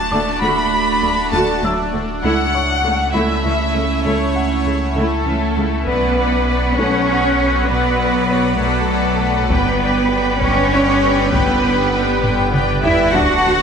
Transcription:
Already playing: D1 A3 D4 F#4 D5 A5 C#6
0.11 D2 D3 A3 D5 D6
0.40 D2 A3 F#4 B5
1.02 D2 D3 A3
1.31 D2 A3 F#4 A5
1.63 D2 F#3 D4 E5 E6
1.93 D2 D3 A3
2.22 C#2 A3 C#4 E4 E5 F#5
2.55 C#5 C#6
2.84 C#2 C#3 A3
3.13 C#2 A3 E4 E5 B5
3.44 C#2 E3 C#4
3.75 C#2 C#3 A3
4.04 C#2 A3 E4 C#5
4.36 F#5
4.66 C#2 C#3 A3
4.95 C#2 A3 E4 A4
5.26 C#2 E3 C#4
5.56 C#2 C#3 A3
5.87 B1 F#3 B3 F#4 B4 D5 F#5, taiko
6.17 B4 D5 F#5
6.47 B4 D5 F#5
6.76 B1 A3 C#4 A4 B4 C#5 F#5
7.07 B4 F#5
7.38 B4 F#5
7.68 B1 B3 B4 D5 F#5
7.99 B4 D5 F#5
8.29 B4 C#5 D5 F#5
8.59 B1 A3 A4 B4 D5 F#5
8.90 B4 D5 F#5
9.21 B4 D5 F#5
9.49 G1 D3 B3 G4 B4 D5 G5, taiko
9.80 B4 D5 G5
10.09 B4 D5 G5
10.41 G1 C#4 B4 C#5 D5 G5, taiko
10.71 C#4 B4 C#5 D5 G5
11.01 B4 D5 G5
11.30 G1 B3 D4 B4 G5, taiko
11.62 D4 B4 G5
11.92 D4 B4 G5
12.22 G1 D4 B4 G5, taiko low-mid
12.53 B4 D5 G5, taiko mid
12.82 E4 B4 D5 E5 G5, taiko low
13.12 D1 D2 D3 A3 D4 F#4 A4 F#5 A5, taiko
13.44 D2 F#4

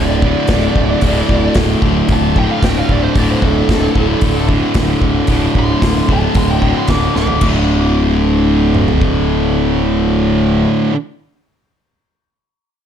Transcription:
Already playing: D1 D2 A2 D3 D5
0.22 A2 D3, kick
0.27 D2
0.48 D1 D2, kick, snare, open hi-hat
0.52 A2 D3
0.75 D1, kick
1.01 D1 D2 A2, kick, open hi-hat
1.07 D3
1.29 D1, kick
1.55 D1, kick, snare, open hi-hat
1.82 D1 D2 A2 D3, kick
2.08 D1, kick, open hi-hat
2.13 A5
2.35 D2 A2 D3 G5, kick
2.51 F5
2.62 D1 D2 A2 D3 G5, kick, snare, open hi-hat
2.79 F5
2.89 D1 D5, kick
3.03 C5
3.15 D1 D2 A2 D3 D5, kick, open hi-hat
3.30 C5
3.42 D1 A4, kick
3.68 D1, kick, snare, open hi-hat
3.95 D1 D2 A2 D3, kick
4.21 D1, kick, open hi-hat
4.48 D2 A2 D3, kick
4.74 D1 D2 A2, kick, snare, open hi-hat
4.78 D3
5.01 D1, kick
5.27 D1 D2 A2 D3, kick, open hi-hat
5.55 D1, kick
5.59 C6
5.82 D1, kick, snare, open hi-hat
6.09 D1 A2 D3, kick
6.13 D2 A5
6.35 D1 C6, kick, open hi-hat
6.50 G5
6.62 D2 A2 D3, kick
6.77 C6
6.88 D1 D2 A2 D6, kick, snare, open hi-hat
6.92 D3
7.16 D1 D6, snare
7.27 floor tom
7.41 D1 D2 A2, kick, crash
7.45 D3
8.75 mid tom
8.88 floor tom
9.02 kick

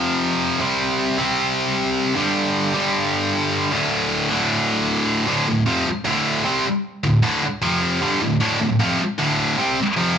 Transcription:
Already playing: F2 C3 F3
0.59 C3 G3 C4
1.18 C3 G3 C4
2.15 G2 D3 G3
2.74 G2 D3 G3
3.72 D2 A2 D3
4.30 D2 A2 D3
5.27 D2 A2 D3
5.47 D2 A2
5.66 F2 C3 F3
5.86 muted distorted electric guitar stroke
6.05 D2 A2 D3
6.45 C3 G3 C4
7.04 D2 A2
7.23 D2 A2 D3
7.43 muted distorted electric guitar stroke
7.62 F2 C3 F3
8.01 G2 D3 G3
8.21 D2 A2
8.40 D2 A2 D3
8.60 D2 A2
8.79 F2 C3 F3
8.99 muted distorted electric guitar stroke
9.18 D2 A2 D3
9.58 C3 G3 C4
9.97 F2 C3 F3

